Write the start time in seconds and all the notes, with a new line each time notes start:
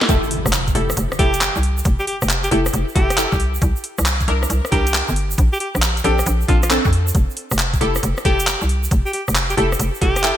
0.01 snare
0.09 F1 E4 G4 A4, kick, closed hi-hat, impact, shaker
0.24 shaker
0.31 open hi-hat
0.46 F1, cross-stick, shaker
0.53 clap, closed hi-hat, shaker
0.68 kick, closed hi-hat, shaker
0.75 F1 E4 G4 A4, open hi-hat
0.90 cross-stick, shaker
0.97 F1, closed hi-hat, shaker
1.12 cross-stick, shaker
1.19 F1 E4 G4 A4, kick, open hi-hat
1.34 closed hi-hat, shaker
1.41 clap, closed hi-hat, shaker
1.56 C2, shaker
1.63 open hi-hat
1.78 shaker
1.85 F1, kick, closed hi-hat, shaker
1.99 G4, shaker
2.07 G4, open hi-hat
2.22 F1, cross-stick, shaker
2.29 clap, closed hi-hat, shaker
2.44 G4, closed hi-hat, shaker
2.51 F1 E4 G4 A4, open hi-hat
2.66 cross-stick, shaker
2.73 F1, closed hi-hat, shaker
2.89 shaker
2.95 F1 E4 G4 A4, kick, open hi-hat
3.10 cross-stick, closed hi-hat, shaker
3.18 E4 G4 A4, clap, closed hi-hat, shaker
3.32 C2, kick, shaker
3.40 open hi-hat
3.55 shaker
3.62 C2, kick, closed hi-hat, shaker
3.76 shaker
3.84 open hi-hat
3.98 C2, cross-stick, shaker
4.06 clap, closed hi-hat, shaker
4.20 kick, closed hi-hat, shaker
4.28 C2 D4 E4 A#4, open hi-hat
4.43 cross-stick, shaker
4.50 C2, closed hi-hat, shaker
4.65 cross-stick, shaker
4.72 C2 D4 E4 G4 A#4, kick, open hi-hat
4.87 closed hi-hat, shaker
4.94 clap, closed hi-hat, shaker
5.08 G1, shaker
5.16 open hi-hat
5.31 shaker
5.38 A#1, kick, closed hi-hat, shaker
5.53 G4, shaker
5.60 G4, open hi-hat
5.75 A#1, cross-stick, shaker
5.82 clap, closed hi-hat, shaker
5.97 closed hi-hat, shaker
6.04 A#1 C4 D4 G4 A4, open hi-hat
6.19 cross-stick, shaker
6.26 A#1, closed hi-hat, shaker
6.41 shaker
6.48 A#1 C4 D4 F4 A4, kick, open hi-hat
6.63 F4, cross-stick, closed hi-hat, shaker
6.71 C4 D4 A4, clap, closed hi-hat, shaker
6.85 F2, kick, shaker
6.93 open hi-hat
7.07 shaker
7.15 F1, kick, closed hi-hat
7.30 shaker
7.37 open hi-hat
7.51 F1, cross-stick, shaker
7.59 clap, closed hi-hat, shaker
7.74 kick, closed hi-hat, shaker
7.81 F1 E4 G4 A4, open hi-hat
7.95 cross-stick, shaker
8.03 F1, closed hi-hat, shaker
8.17 cross-stick, shaker
8.25 F1 E4 G4 A4, kick, open hi-hat
8.40 closed hi-hat, shaker
8.47 clap, closed hi-hat, shaker
8.61 C2, shaker
8.69 open hi-hat
8.84 shaker
8.91 F1, kick, closed hi-hat, shaker
9.06 G4, shaker
9.13 G4, open hi-hat
9.28 F1, cross-stick, shaker
9.35 clap, closed hi-hat, shaker
9.50 G4, closed hi-hat, shaker
9.57 F1 E4 G4 A4, open hi-hat
9.72 cross-stick, shaker
9.79 F1, closed hi-hat, shaker
9.95 shaker
10.02 F1 E4 G4 A4, kick, open hi-hat
10.16 cross-stick, closed hi-hat, shaker
10.24 E4 G4 A4, clap, closed hi-hat, shaker